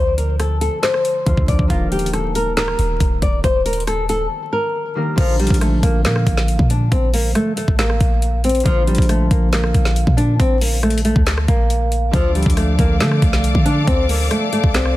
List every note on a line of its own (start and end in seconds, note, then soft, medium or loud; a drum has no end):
0.00 0.69 D2 loud
0.00 1.24 D3 medium
0.00 1.25 F3 medium
0.00 1.26 A3 medium
0.00 1.23 F4 medium
0.00 1.24 A4 medium
0.00 0.13 C5 loud
0.18 0.34 A#4 medium
0.18 closed hi-hat medium
0.40 0.56 A4 medium
0.40 cross-stick medium
0.40 closed hi-hat medium
0.61 0.78 A4 medium
0.61 closed hi-hat medium
0.83 1.44 C5 medium
0.83 snare loud
0.83 clap loud
0.83 closed hi-hat medium
0.94 cross-stick medium
1.05 closed hi-hat medium
1.26 1.37 D2 loud
1.26 1.75 D3 medium
1.26 1.75 F3 soft
1.26 1.70 A3 soft
1.26 1.70 F4 soft
1.26 1.71 C5 medium
1.26 kick medium
1.26 closed hi-hat medium
1.37 1.48 D2 loud
1.37 kick medium
1.48 1.58 D2 loud
1.48 1.65 D5 medium
1.48 kick loud
1.48 closed hi-hat medium
1.59 1.70 D2 loud
1.59 kick loud
1.68 2.75 D#1 loud
1.68 4.94 D#3 medium
1.68 4.94 G3 medium
1.68 4.92 A#3 medium
1.68 1.87 F4 loud
1.68 4.93 G4 medium
1.68 kick loud
1.68 closed hi-hat medium
1.73 4.93 A#4 medium
1.92 2.08 G4 medium
1.92 closed hi-hat soft
1.99 closed hi-hat medium
2.06 closed hi-hat medium
2.13 2.30 A4 medium
2.13 cross-stick medium
2.13 closed hi-hat medium
2.35 2.52 A#4 medium
2.35 closed hi-hat medium
2.57 3.18 A#4 medium
2.57 snare loud
2.57 clap loud
2.57 closed hi-hat medium
2.68 cross-stick medium
2.79 3.00 D#1 loud
2.79 closed hi-hat medium
3.00 3.21 D1 loud
3.00 kick loud
3.00 closed hi-hat medium
3.22 3.43 D#1 loud
3.22 3.39 D5 medium
3.22 kick loud
3.22 closed hi-hat medium
3.44 4.27 D#1 loud
3.44 3.60 C5 loud
3.44 kick loud
3.44 closed hi-hat medium
3.66 3.82 A#4 medium
3.66 closed hi-hat medium
3.73 closed hi-hat medium
3.80 closed hi-hat medium
3.87 4.04 A4 medium
3.87 cross-stick medium
3.87 closed hi-hat medium
4.09 4.26 A4 medium
4.09 closed hi-hat medium
4.53 5.14 A#4 medium
4.95 5.23 D#3 soft
4.95 5.23 G3 soft
4.95 5.17 A#3 soft
4.95 5.18 G4 soft
4.95 5.19 A#4 medium
5.16 5.49 A#1 loud
5.16 8.62 D3 medium
5.16 8.63 F3 medium
5.16 5.34 F3 loud
5.16 8.62 A#3 medium
5.16 8.62 F4 medium
5.16 kick loud
5.16 closed hi-hat medium
5.16 crash loud
5.20 8.63 A#4 medium
5.40 5.56 G3 medium
5.40 closed hi-hat soft
5.47 5.82 A#1 loud
5.47 kick loud
5.47 closed hi-hat medium
5.54 closed hi-hat medium
5.61 5.78 A3 medium
5.61 cross-stick medium
5.61 closed hi-hat medium
5.83 6.06 A#1 loud
5.83 6.00 A#3 medium
5.83 kick loud
5.83 closed hi-hat medium
6.05 6.25 A#2 loud
6.05 6.66 A#3 medium
6.05 snare loud
6.05 clap loud
6.05 closed hi-hat medium
6.16 cross-stick medium
6.27 6.58 A1 loud
6.27 kick loud
6.27 closed hi-hat medium
6.37 snare medium
6.48 closed hi-hat medium
6.59 6.90 A#2 loud
6.59 kick medium
6.70 6.87 D4 medium
6.70 closed hi-hat medium
6.92 7.34 A#1 loud
6.92 7.08 C4 loud
6.92 kick loud
6.92 closed hi-hat medium
7.14 7.30 A#3 medium
7.14 open hi-hat medium
7.35 7.52 A3 medium
7.35 cross-stick medium
7.35 closed hi-hat medium
7.57 7.74 A3 medium
7.57 closed hi-hat medium
7.68 7.99 A1 loud
7.68 kick loud
7.79 8.40 A#3 medium
7.79 snare loud
7.79 clap medium
7.79 closed hi-hat medium
7.90 cross-stick medium
8.00 8.63 A#1 loud
8.00 kick loud
8.00 closed hi-hat medium
8.22 closed hi-hat medium
8.44 8.61 C4 medium
8.44 closed hi-hat medium
8.49 closed hi-hat medium
8.55 closed hi-hat medium
8.60 12.10 D3 medium
8.60 closed hi-hat soft
8.65 8.97 A#1 loud
8.65 12.11 F3 medium
8.65 8.82 F3 loud
8.65 12.10 A#3 medium
8.65 12.10 F4 medium
8.65 12.11 C5 medium
8.65 kick loud
8.65 closed hi-hat medium
8.88 9.04 G3 loud
8.88 closed hi-hat soft
8.95 9.30 A#1 loud
8.95 kick loud
8.95 closed hi-hat medium
9.02 closed hi-hat medium
9.09 9.26 A3 medium
9.09 cross-stick medium
9.09 closed hi-hat medium
9.31 9.73 A#1 loud
9.31 9.47 A#3 medium
9.31 kick loud
9.31 closed hi-hat medium
9.53 10.14 A#3 medium
9.53 snare loud
9.53 clap loud
9.53 closed hi-hat medium
9.64 cross-stick medium
9.74 10.06 A#1 loud
9.74 kick loud
9.74 closed hi-hat medium
9.85 snare medium
9.96 closed hi-hat medium
10.07 10.38 A#2 loud
10.07 kick medium
10.17 10.34 D4 medium
10.17 closed hi-hat medium
10.40 11.13 A#1 loud
10.40 10.56 C4 loud
10.40 kick loud
10.40 closed hi-hat medium
10.61 10.78 A#3 medium
10.61 open hi-hat medium
10.83 11.00 A3 medium
10.83 cross-stick medium
10.83 closed hi-hat soft
10.90 closed hi-hat medium
10.98 closed hi-hat medium
11.05 11.21 A3 medium
11.05 closed hi-hat medium
11.16 11.47 D2 loud
11.16 kick loud
11.27 snare loud
11.27 clap loud
11.27 closed hi-hat medium
11.38 cross-stick loud
11.48 12.11 A#1 loud
11.48 12.10 A#3 medium
11.48 kick loud
11.48 closed hi-hat medium
11.70 closed hi-hat medium
11.92 closed hi-hat medium
12.11 12.45 D2 loud
12.11 14.97 D3 medium
12.11 14.97 F3 medium
12.11 12.30 F3 loud
12.11 14.97 A3 medium
12.11 14.97 F4 medium
12.11 14.97 A4 medium
12.11 14.97 D5 medium
12.11 14.97 F5 medium
12.11 14.97 D6 medium
12.11 kick loud
12.11 closed hi-hat medium
12.16 14.97 A4 medium
12.35 12.52 G3 medium
12.35 closed hi-hat soft
12.43 12.77 D2 loud
12.43 kick loud
12.43 closed hi-hat medium
12.50 closed hi-hat medium
12.57 12.73 A3 medium
12.57 cross-stick medium
12.57 closed hi-hat medium
12.79 13.02 D2 loud
12.79 12.95 A#3 medium
12.79 kick loud
12.79 closed hi-hat medium
13.00 13.21 D3 loud
13.00 13.62 A3 medium
13.00 snare loud
13.00 clap loud
13.00 closed hi-hat medium
13.11 cross-stick medium
13.22 13.54 C2 loud
13.22 kick loud
13.22 closed hi-hat medium
13.33 snare medium
13.44 closed hi-hat medium
13.55 13.86 D3 loud
13.55 kick loud
13.65 13.82 D4 medium
13.65 closed hi-hat medium
13.87 14.29 D2 loud
13.87 14.04 C4 loud
13.87 kick loud
13.87 closed hi-hat medium
14.09 14.26 A#3 medium
14.09 open hi-hat medium
14.31 14.47 A3 medium
14.31 cross-stick medium
14.31 closed hi-hat medium
14.53 14.69 A3 medium
14.53 closed hi-hat medium
14.64 14.95 C2 loud
14.64 kick loud
14.74 14.97 C4 medium
14.74 snare loud
14.74 clap medium
14.74 closed hi-hat medium
14.85 cross-stick medium